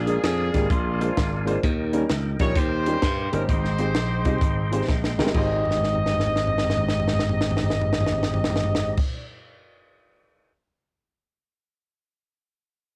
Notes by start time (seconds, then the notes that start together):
Already playing: A#1 A#2 D4 F4 G#4 A#4 D5 F5 G#5
0.06 G#3 A#3 D4 F4 A#4, closed hi-hat
0.23 F2 D4 F4 G#4, snare, closed hi-hat
0.53 G#1 G#3 A#3 D4 F4 G4, kick, snare, closed hi-hat
0.70 A#1 G#3 D4 F4, kick, closed hi-hat
1.00 G#3 A#3 D4 F4 C5, closed hi-hat
1.17 G#1, kick, snare, closed hi-hat
1.46 G#3 A#3 D4 F4 C5, closed hi-hat
1.63 D#2 D#3 D#5 G5, kick, closed hi-hat
1.93 G3 A#3 C#4 D#4 A#4, closed hi-hat
2.10 C#2, snare, closed hi-hat
2.40 A#1 G3 A#3 C#4 D#4 F4 C#5, kick, snare, closed hi-hat
2.55 D#2 G4 C5, kick, closed hi-hat
2.86 G3 A#3 C#4 D#4 G4, closed hi-hat
3.02 G2, kick, snare, closed hi-hat
3.32 G1 G3 A#3 C#4 D#4 A#4 C5, closed hi-hat
3.48 G#1 G#2 G#3 D#4 G4 C5 C6, kick, closed hi-hat
3.65 snare
3.79 G#3 C4 D#4 G4 C5, closed hi-hat
3.95 A#1, snare, closed hi-hat
4.25 C2 G#3 C4 D#4 G4 D#5, kick, closed hi-hat
4.41 G#1, kick, closed hi-hat
4.71 G#3 C4 D#4 G4 C5, closed hi-hat
4.88 A#1, kick, snare
5.04 snare
5.18 G1 G#3 C4 D#4 G4 A#4, snare
5.27 snare
5.32 G#1 G#3 C4 D#4 G4 D#5, kick, crash
5.38 C5
5.65 floor tom
5.71 snare
5.77 floor tom
5.84 snare
5.95 floor tom
6.06 snare
6.14 floor tom
6.20 snare
6.26 floor tom
6.36 snare
6.47 floor tom
6.58 snare
6.64 floor tom
6.70 snare
6.77 floor tom
6.88 snare
7.00 floor tom
7.07 snare
7.13 floor tom
7.19 snare
7.29 floor tom
7.41 snare
7.51 floor tom
7.57 snare
7.63 floor tom
7.70 snare
7.81 floor tom
7.93 snare
8.00 floor tom
8.06 snare
8.12 floor tom
8.23 snare
8.34 floor tom
8.44 snare
8.50 floor tom
8.56 snare
8.64 floor tom
8.75 snare
8.97 kick, crash